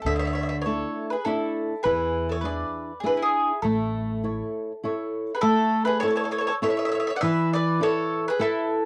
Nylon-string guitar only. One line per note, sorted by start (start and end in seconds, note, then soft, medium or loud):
0.06 0.63 D3 medium
0.66 1.13 A3 soft
0.66 1.14 D4 soft
0.66 1.14 E4 soft
1.26 1.73 A3 soft
1.26 1.73 D4 soft
1.26 1.73 E4 medium
1.85 2.42 E3 medium
2.44 2.91 D4 soft
2.44 2.91 E4 soft
2.44 2.92 G#4 soft
3.03 3.51 D4 medium
3.03 3.51 E4 medium
3.03 3.51 G#4 medium
3.64 4.21 A3 medium
4.24 4.71 E4 soft
4.24 4.71 A4 soft
4.24 4.71 C#5 soft
4.84 5.31 E4 soft
4.84 5.31 A4 soft
4.84 5.32 C#5 medium
5.43 6.01 A3 medium
6.03 6.50 E4 soft
6.03 6.51 A4 soft
6.03 6.51 C#5 soft
6.62 7.09 E4 medium
6.62 7.10 A4 medium
6.62 7.10 C#5 medium
7.22 7.79 E3 medium
7.81 8.28 E4 soft
7.81 8.28 A4 soft
7.81 8.28 B4 soft
8.39 8.85 E4 medium
8.39 8.85 A4 medium
8.39 8.85 B4 medium